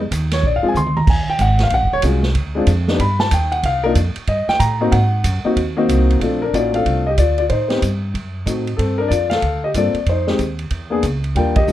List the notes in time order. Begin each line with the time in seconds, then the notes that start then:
Already playing: F2
0.11 D#2, kick, hi-hat pedal, ride
0.31 C#5, snare, ride
0.43 A#1 D5, kick
0.56 F5
0.62 F3 G#3 C4 F4, muted upright bass stroke
0.68 G#5
0.74 D2 C6, hi-hat pedal, mid tom
0.86 mid tom
0.97 A#5, mid tom
1.07 D#2 G#5, kick, crash
1.27 G5, muted upright bass stroke
1.39 G#1 F#5, kick, hi-hat pedal, ride
1.59 snare, ride
1.63 F5
1.70 A#1 F#5, kick, ride
1.82 F#1
1.93 D#1 C#5
2.02 C2 F#3 G#3 C#4 F4, kick, hi-hat pedal, ride
2.23 snare
2.35 D2, kick, ride
2.55 G#3 C4 D4 F4
2.67 F2, kick, hi-hat pedal, ride
2.88 B3 D4 D#4 G4, snare
2.99 G2 B5, kick, ride
3.19 A5, snare
3.31 D#2 G5, kick, hi-hat pedal, ride
3.52 F#5, ride
3.63 C2 F5, kick, ride
3.84 A#3 D4 D#4 F4 A#4
3.95 F2, kick, hi-hat pedal, ride
4.16 muted upright bass stroke, ride
4.27 G2 D#5, kick, ride
4.47 G5, muted upright bass stroke, snare
4.59 A2 A#5, kick, hi-hat pedal, ride
4.81 A#3 C4 D#4 F#4
4.92 G#2 F#5, kick, ride
5.24 F#2, kick, hi-hat pedal, ride
5.44 A#3 C4 D#4 F#4, muted upright bass stroke
5.56 D#2, kick, ride
5.77 A#3 C4 D#4 F#4
5.89 C2, kick, hi-hat pedal, ride
6.10 ride
6.20 A#1 A3 C4 D4 F4 A4, kick, ride
6.42 D4 A#4
6.53 A1 A#3 C#4 D#4 F4 F#4 D5, kick, hi-hat pedal, ride
6.72 A3 C4 D4 F4 F5, ride
6.77 A4
6.86 C2, kick, ride
7.07 G4 D#5
7.18 D2 F4 D5, kick, hi-hat pedal, ride
7.38 F4 D5, ride
7.49 A2 D#4 C5, kick, ride
7.68 B3 C4 D#4 G4, snare, ride
7.82 G2, kick, hi-hat pedal, ride
8.14 F#2, kick, ride
8.46 A2 A3 C4 D#4 F#4, kick, hi-hat pedal, ride
8.67 ride
8.77 G2 C4 A4, kick, ride
8.98 D4 A#4
9.08 F2 F4 D5, kick, hi-hat pedal, ride
9.30 A4 F5, snare, ride
9.42 D2, kick, ride
9.64 G4 D#5
9.74 G2 A#3 C4 F4 A4 D5, kick, hi-hat pedal, ride
9.94 muted upright bass stroke, ride
10.06 F2 D#4 C5, kick, ride
10.27 G#3 C4 D#4 G4, snare
10.39 D#2, kick, hi-hat pedal, ride
10.59 ride
10.70 E2, kick, ride
10.90 A#3 B3 D4 G#4
11.03 C#2, kick, hi-hat pedal, ride
11.24 ride
11.35 D#2 G3 A#3 D4 F4 A#4 G5, kick, ride
11.56 G4 D#5, kick, ride
11.67 A#1 G3 A#3 D4 F4, hi-hat pedal